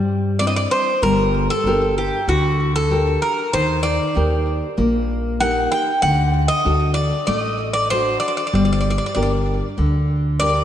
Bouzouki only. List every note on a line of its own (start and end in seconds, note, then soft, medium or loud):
0.00 0.38 D5 medium
0.39 0.47 D5 medium
0.47 0.55 D#5 medium
0.56 0.71 D5 medium
0.71 1.03 C5 medium
1.03 1.47 A#4 medium
1.50 1.94 A4 medium
1.98 2.27 G4 medium
2.29 2.72 F#4 medium
2.76 3.19 A4 medium
3.22 3.51 A#4 medium
3.53 3.82 C5 medium
3.83 5.36 D5 medium
5.40 5.71 F#5 medium
5.72 6.02 G5 medium
6.02 6.48 F#5 loud
6.48 6.93 D#5 medium
6.94 7.25 D5 medium
7.27 7.39 D5 medium
7.39 7.73 D#5 medium
7.73 7.90 D5 medium
7.90 8.19 C5 medium
8.20 8.27 D5 medium
8.28 8.36 D5 medium
8.37 8.46 D5 medium
8.47 8.54 D5 medium
8.55 8.63 D5 medium
8.65 8.71 D5 soft
8.73 8.79 D5 medium
8.81 8.89 D5 medium
8.90 8.97 D5 medium
8.98 9.05 D5 medium
9.06 9.13 D5 medium
9.15 9.21 D5 medium
9.23 9.31 D5 medium
10.40 10.62 D5 loud